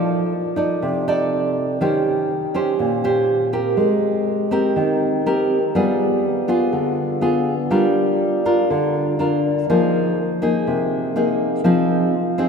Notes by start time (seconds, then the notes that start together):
Already playing: F3 D#4 A4 D5
0.56 D#4 A4 D5
0.82 C3
1.08 D#4 A4 D5
1.81 D#3 C#4 G4 C5
2.54 C#4 G4 C5
2.79 A#2
3.04 C#4 G4 C5
3.53 C4 G4 A#4
3.77 G#3
4.51 C4 G4 A#4
4.76 D#3
5.26 C4 G4 A#4
5.75 G3 B3 F4 G#4
6.48 B3 F4 G#4
6.73 D3
7.21 B3 F4 G#4
7.70 G3 D4 F4 A#4
8.45 D4 F4 A#4
8.70 D3
9.19 D4 F4 A#4
9.70 F3 A#3 D#4 G#4
10.42 A#3 D#4 G#4
10.67 C3
11.16 A#3 D#4 G#4
11.64 F3 C4 D#4 G#4
12.38 C4 D#4 G#4